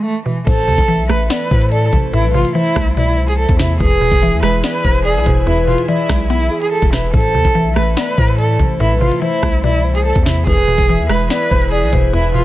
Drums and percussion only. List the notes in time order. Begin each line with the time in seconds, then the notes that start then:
0.47 kick, closed hi-hat, crash
0.78 kick, closed hi-hat
1.09 cross-stick, closed hi-hat
1.16 closed hi-hat
1.23 closed hi-hat
1.30 snare, closed hi-hat
1.51 kick
1.62 closed hi-hat
1.72 closed hi-hat
1.93 kick, closed hi-hat
2.14 closed hi-hat
2.45 closed hi-hat
2.76 kick, cross-stick, closed hi-hat
2.87 closed hi-hat
2.97 closed hi-hat
3.28 closed hi-hat
3.49 kick, closed hi-hat
3.59 snare, closed hi-hat
3.80 kick, closed hi-hat
4.11 kick, closed hi-hat
4.43 cross-stick, closed hi-hat
4.50 closed hi-hat
4.57 closed hi-hat
4.64 snare, closed hi-hat
4.84 kick
4.95 closed hi-hat
5.05 closed hi-hat
5.26 kick, closed hi-hat
5.47 closed hi-hat
5.78 closed hi-hat
6.09 kick, cross-stick, snare, closed hi-hat
6.20 closed hi-hat
6.30 closed hi-hat
6.62 closed hi-hat
6.82 kick, closed hi-hat
6.93 cross-stick, snare, closed hi-hat
7.00 closed hi-hat
7.07 closed hi-hat
7.14 kick, closed hi-hat
7.21 closed hi-hat
7.28 closed hi-hat
7.45 kick, closed hi-hat
7.76 cross-stick, closed hi-hat
7.83 closed hi-hat
7.90 closed hi-hat
7.97 snare, closed hi-hat
8.18 kick
8.28 closed hi-hat
8.39 closed hi-hat
8.59 kick, closed hi-hat
8.80 closed hi-hat
9.12 closed hi-hat
9.43 kick, cross-stick, closed hi-hat
9.53 closed hi-hat
9.64 closed hi-hat
9.95 closed hi-hat
10.15 kick, closed hi-hat
10.26 snare, closed hi-hat
10.47 kick, closed hi-hat
10.78 kick, closed hi-hat
11.09 cross-stick, closed hi-hat
11.16 closed hi-hat
11.23 closed hi-hat
11.30 snare, closed hi-hat
11.51 kick
11.62 closed hi-hat
11.72 closed hi-hat
11.93 kick, closed hi-hat
12.14 closed hi-hat